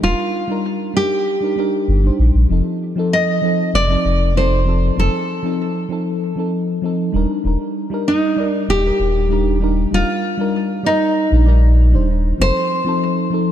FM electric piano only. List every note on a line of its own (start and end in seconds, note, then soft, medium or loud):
0.01 0.45 G3 medium
0.01 0.45 D4 medium
0.01 0.46 D#4 medium
0.01 0.46 A#4 medium
0.48 0.91 G3 medium
0.48 0.92 D4 medium
0.48 0.92 D#4 medium
0.48 0.93 A#4 loud
0.94 1.38 G3 medium
0.94 1.38 D4 medium
0.94 1.39 D#4 medium
0.94 1.40 A#4 medium
1.41 1.54 G3 medium
1.41 1.54 D4 medium
1.41 1.55 D#4 medium
1.41 1.55 A#4 medium
1.56 2.00 G3 medium
1.56 2.00 D4 medium
1.56 2.01 D#4 medium
1.56 2.02 A#4 loud
2.03 2.46 G3 medium
2.03 2.47 D4 medium
2.03 2.47 D#4 medium
2.03 2.48 C5 medium
2.49 2.93 F3 medium
2.49 2.93 C4 medium
2.49 2.94 D#4 medium
2.49 2.94 A4 medium
2.96 3.39 F3 medium
2.96 3.39 C4 medium
2.96 3.40 D#4 medium
2.96 3.41 A4 loud
3.42 3.85 F3 medium
3.42 3.86 C4 medium
3.42 3.87 D#4 medium
3.42 3.87 A4 medium
3.88 4.31 F3 medium
3.88 4.32 C4 medium
3.88 4.33 D#4 medium
3.88 4.33 A4 medium
4.34 4.62 F3 medium
4.34 4.63 C4 medium
4.34 4.64 D#4 medium
4.34 4.64 A4 medium
4.65 4.93 F3 medium
4.65 4.94 C4 medium
4.65 4.94 D#4 medium
4.65 4.95 A4 medium
4.96 5.40 F3 medium
4.96 5.40 C4 medium
4.96 5.41 D#4 medium
4.96 5.41 A4 medium
5.43 5.86 F3 medium
5.43 5.87 C4 medium
5.43 5.87 D#4 medium
5.43 5.88 A4 loud
5.89 6.33 F3 medium
5.89 6.33 C4 medium
5.89 6.34 D#4 medium
5.89 6.34 A4 medium
6.36 6.79 F3 medium
6.36 6.80 C4 medium
6.36 6.80 D#4 medium
6.36 6.81 A4 medium
6.82 7.10 F3 medium
6.82 7.11 C4 medium
6.82 7.11 D#4 medium
6.82 7.12 A4 medium
7.12 7.41 G3 medium
7.12 7.41 D4 medium
7.12 7.42 D#4 medium
7.12 7.43 A#4 medium
7.44 7.87 G3 medium
7.44 7.88 D4 medium
7.44 7.89 D#4 medium
7.44 7.89 A#4 medium
7.90 8.33 G3 medium
7.90 8.34 D4 medium
7.90 8.35 D#4 medium
7.90 8.35 A#4 loud
8.36 8.80 G3 medium
8.36 8.81 D#4 medium
8.36 8.82 A#4 medium
8.36 8.81 D5 medium
8.83 9.26 G3 medium
8.83 9.27 D4 medium
8.83 9.28 D#4 medium
8.83 9.28 A#4 medium
9.29 9.57 G3 medium
9.29 9.58 D4 medium
9.29 9.58 D#4 medium
9.29 9.59 A#4 medium
9.60 9.88 G3 medium
9.60 9.89 D4 medium
9.60 9.89 D#4 medium
9.60 9.90 A#4 medium
9.91 10.35 G3 medium
9.91 10.35 D4 medium
9.91 10.36 D#4 medium
9.91 10.37 A#4 medium
10.37 10.81 G3 medium
10.37 10.81 D4 medium
10.37 10.82 D#4 medium
10.37 10.83 A#4 loud
10.83 11.27 G3 medium
10.83 11.29 D#4 medium
10.83 11.29 A#4 medium
10.83 11.28 D5 medium
11.30 11.43 G3 medium
11.30 11.44 D4 medium
11.30 11.44 D#4 medium
11.30 11.45 A#4 medium
11.45 11.89 G3 medium
11.45 11.90 D#4 medium
11.45 11.90 D5 medium
11.49 11.91 A#4 loud
11.91 12.35 G3 medium
11.91 12.36 D4 medium
11.91 12.36 D#4 medium
11.91 12.37 C5 medium
12.38 12.82 F3 medium
12.38 12.83 C4 medium
12.38 12.83 D#4 medium
12.38 12.84 A4 medium
12.84 13.28 F3 medium
12.84 13.29 C4 medium
12.84 13.29 D#4 medium
12.84 13.30 A4 loud
13.30 13.52 F3 medium
13.30 13.52 C4 medium
13.30 13.52 D#4 medium
13.30 13.52 A4 medium